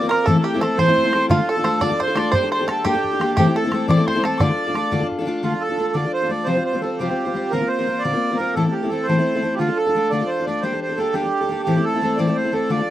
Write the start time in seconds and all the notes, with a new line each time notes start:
Already playing: D5 D6
0.01 A#3 C4 F4 A#4
0.09 A#3 C4 F4 A#4 A#5, bodhran
0.24 A2 E3 A3 A4 A5, bodhran
0.28 C4 E4 A4
0.35 A3 E4 A4
0.44 G4 G5
0.54 A3 C4 E4 A4
0.60 A3 C4 E4 A4 A5, bodhran
0.77 A2 E3 A3 C4 E4 A4 C5 C6, bodhran
0.88 A3 C4 E4 A4, bodhran
0.97 bodhran
1.04 A3 C4 E4 A4
1.13 A3 C4 E4 A4, bodhran
1.29 D3 A3 D4 F4 A4 F5, bodhran
1.38 D4 F4 A4
1.49 A4 A5
1.56 D4 F4 A4
1.64 A3 D4 F4 A4 C5, bodhran
1.81 D3 A3 D4 F4 A4 D5 D6, bodhran
1.89 D4 F4 A4, bodhran
2.00 C5 C6, bodhran
2.07 D4 F4 A4
2.15 A3 D4 F4 A4 D5, bodhran
2.32 G3 A#3 D4 G4 A4 C5 C6, bodhran
2.42 D4 G4 A4
2.51 C5 C6
2.59 D4 G4 A4
2.68 A#3 D4 G4 A4 A5, bodhran
2.84 G3 A#3 D4 G4 A4 G5, bodhran
2.93 D4 G4 A4, bodhran
3.04 bodhran
3.12 D4 G4 A4
3.20 A#3 D4 G4 A4, bodhran
3.36 A2 E3 A3 C4 E4 G4 A4 G5, bodhran
3.46 A3 C4 E4 A4
3.56 A4
3.64 A3 C4 E4 A4
3.72 A3 C4 E4 A4, bodhran
3.88 A2 E3 A3 C4 E4 A4 D5 D6, bodhran
3.97 A3 C4 E4 A4
4.07 C5 C6, bodhran
4.15 A3 C4 E4 A4
4.23 A3 C4 E4 A4 A5, bodhran
4.38 D3 A3 D4 F4 A4 D5 D6, bodhran
4.49 D4 F4 A4
4.67 D4 F4 A4
4.74 A3 D4 F4 A4, bodhran
4.91 D3 A3 D4 F4 A4, bodhran
5.00 D4 F4 A4, bodhran
5.11 bodhran
5.19 D4 F4 A4
5.26 A3 D4 F4 A4
5.43 D3 A3 D4 F4 A4
5.52 D4 F4 A4
5.60 A4
5.69 D4 F4 A4
5.77 A3 D4 F4 A4
5.94 D3 A3 D4 F4 A4 D5
6.04 D4 F4 A4
6.13 C5
6.22 D4 F4 A4
6.29 A3 D4 F4 A4 D5
6.45 C3 F3 G3 C4 F4 C5
6.55 G3 C4 F4 C5
6.65 C5
6.73 G3 C4 F4 C5
6.82 G3 C4 F4 A4 C5
6.98 C3 F3 G3 C4 F4 G4 C5
7.09 G3 C4 F4 C5
7.25 G3 C4 F4 C5
7.34 G3 C4 F4 C5
7.50 A#2 D3 A#3 C4 F4 A#4
7.60 A#3 C4 F4 A#4
7.68 C5
7.79 A#3 C4 F4 A#4
7.87 A#3 C4 F4 A#4
7.99 D5
8.04 A#2 D3 A#3 C4 F4 A#4
8.13 A#3 C4 F4 A#4
8.31 A#3 C4 F4 A#4
8.36 A#3 C4 F4 A#4
8.41 A#4
8.54 A2 E3 A3 C4 E4 A4
8.65 A3 C4 E4 A4
8.72 G4
8.83 A3 C4 E4 A4
8.88 A3 C4 A4
8.93 E4 A4
9.03 C5
9.08 A2 E3 A3 C4 E4 A4
9.17 A3 C4 E4 A4
9.35 A3 C4 E4 A4
9.43 A3 C4 E4 A4
9.55 F4 G4
9.59 D3 A3 D4 F4 A4
9.69 D4 F4 A4
9.77 A4
9.86 D4 F4 A4
9.95 A3 D4 F4 A4
10.10 D3 A3 D4 F4 A4 D5
10.21 D4 F4 A4
10.26 C5
10.40 D4 F4 A4
10.46 A3 D4 F4 A4 D5
10.62 G3 A#3 D4 G4 A4 C5
10.72 D4 G4 A4
10.81 C5
10.89 D4 G4 A4
10.96 A#3 D4 G4 A4
11.12 G3 A#3 D4 G4 A4
11.23 D4 G4 A4
11.41 D4 G4 A4
11.49 A#3 D4 G4 A4
11.63 A2 E3 G4
11.67 A3 C4 E4 A4
11.76 A3 C4 E4 A4
11.84 A4
11.94 A3 C4 E4 A4
12.02 A3 C4 E4 A4
12.16 A2 E3 A3 C4 E4 A4 D5
12.27 A3 C4 E4 A4
12.35 C5
12.44 A3 C4 E4 A4
12.52 A3 C4 E4 A4
12.69 D3 A3 D4 F4 A4 D5
12.79 D4 F4 A4